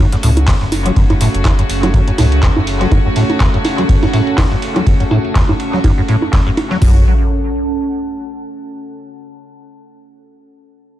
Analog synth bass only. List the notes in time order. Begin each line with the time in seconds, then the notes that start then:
0.23 C#2
0.61 F#1
0.96 F#1
1.34 F#1
1.69 F#1
2.18 C#2
2.56 F#1
6.82 F#1